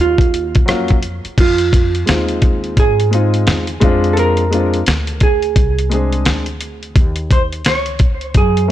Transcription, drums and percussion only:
0.18 kick, closed hi-hat
0.34 closed hi-hat
0.55 kick, closed hi-hat
0.68 cross-stick, closed hi-hat
0.88 kick, closed hi-hat
1.03 closed hi-hat
1.25 closed hi-hat
1.38 kick, closed hi-hat, crash
1.58 closed hi-hat
1.73 kick, closed hi-hat
1.95 closed hi-hat
2.07 snare, closed hi-hat
2.28 closed hi-hat
2.42 kick, closed hi-hat
2.64 closed hi-hat
2.77 kick, closed hi-hat
3.00 closed hi-hat
3.13 closed hi-hat
3.34 closed hi-hat
3.47 snare, closed hi-hat
3.67 closed hi-hat
3.81 kick, closed hi-hat
4.04 closed hi-hat
4.17 closed hi-hat
4.37 closed hi-hat
4.53 closed hi-hat
4.74 closed hi-hat
4.86 snare, closed hi-hat
5.07 closed hi-hat
5.20 kick, closed hi-hat
5.42 closed hi-hat
5.56 kick, closed hi-hat
5.79 closed hi-hat
5.91 closed hi-hat
6.12 closed hi-hat
6.25 snare, closed hi-hat
6.46 closed hi-hat
6.61 closed hi-hat
6.83 closed hi-hat
6.96 kick, closed hi-hat
7.16 closed hi-hat
7.31 kick, closed hi-hat
7.53 closed hi-hat
7.65 snare, closed hi-hat
7.86 closed hi-hat
7.99 kick, closed hi-hat
8.21 closed hi-hat
8.34 kick, closed hi-hat
8.57 closed hi-hat

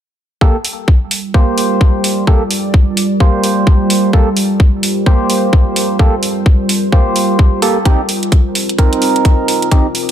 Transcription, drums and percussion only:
0.41 kick
0.65 open hi-hat
0.88 kick
1.11 open hi-hat
1.34 kick
1.58 open hi-hat
1.81 kick
2.04 open hi-hat
2.27 kick
2.51 open hi-hat
2.74 kick
2.97 open hi-hat
3.20 kick
3.44 open hi-hat
3.67 kick
3.90 open hi-hat
4.13 kick
4.37 open hi-hat
4.60 kick
4.83 open hi-hat
5.06 kick
5.30 open hi-hat
5.53 kick
5.76 open hi-hat
5.99 kick
6.23 open hi-hat
6.46 kick
6.69 open hi-hat
6.92 kick
7.16 open hi-hat
7.39 kick
7.62 open hi-hat
7.85 kick, closed hi-hat
8.09 open hi-hat
8.23 closed hi-hat
8.32 kick, closed hi-hat
8.55 open hi-hat
8.69 closed hi-hat
8.78 kick, closed hi-hat
8.93 closed hi-hat
9.02 open hi-hat
9.16 closed hi-hat
9.25 kick, closed hi-hat
9.48 open hi-hat
9.62 closed hi-hat
9.71 kick, closed hi-hat
9.95 open hi-hat

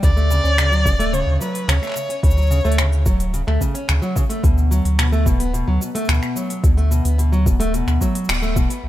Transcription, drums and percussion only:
0.03 kick, open hi-hat, cabasa
0.17 cabasa
0.31 cabasa
0.45 cabasa
0.58 finger snap, open hi-hat, cabasa
0.73 cabasa
0.86 kick, cabasa
1.00 open hi-hat, cabasa
1.14 open hi-hat, cabasa
1.41 cabasa
1.55 open hi-hat, cabasa
1.69 finger snap, open hi-hat, cabasa
1.83 finger snap, cabasa
1.85 finger snap
1.87 finger snap
1.89 finger snap
1.92 finger snap
1.94 finger snap, cabasa
2.10 open hi-hat, cabasa
2.23 kick, open hi-hat
2.31 cabasa
2.38 cabasa
2.42 cabasa
2.47 cabasa
2.51 cabasa
2.60 cabasa
2.65 cabasa
2.72 open hi-hat
2.78 finger snap, open hi-hat, cabasa
2.93 cabasa
3.06 kick, cabasa
3.20 open hi-hat, cabasa
3.34 open hi-hat, cabasa
3.48 finger snap
3.61 kick, cabasa
3.75 open hi-hat, cabasa
3.89 finger snap, open hi-hat, cabasa
4.03 cabasa
4.16 kick, cabasa
4.30 open hi-hat, cabasa
4.44 kick, open hi-hat, cabasa
4.58 cabasa
4.72 cabasa
4.85 open hi-hat
4.99 finger snap, open hi-hat, cabasa
5.13 cabasa
5.26 kick, cabasa
5.40 open hi-hat, cabasa
5.54 open hi-hat, cabasa
5.82 cabasa
5.95 open hi-hat, cabasa
6.05 cabasa
6.09 finger snap, open hi-hat, cabasa
6.23 finger snap, cabasa
6.36 cabasa
6.50 open hi-hat, cabasa
6.64 kick, open hi-hat, cabasa
6.78 cabasa
6.92 cabasa
7.05 open hi-hat, cabasa
7.19 open hi-hat, cabasa
7.33 cabasa
7.46 kick, cabasa
7.60 open hi-hat, cabasa
7.74 open hi-hat, cabasa
7.88 finger snap, cabasa
8.01 kick, cabasa
8.15 open hi-hat, cabasa
8.25 cabasa
8.29 finger snap, open hi-hat, cabasa
8.34 cabasa
8.43 cabasa
8.56 kick, cabasa
8.70 open hi-hat, cabasa

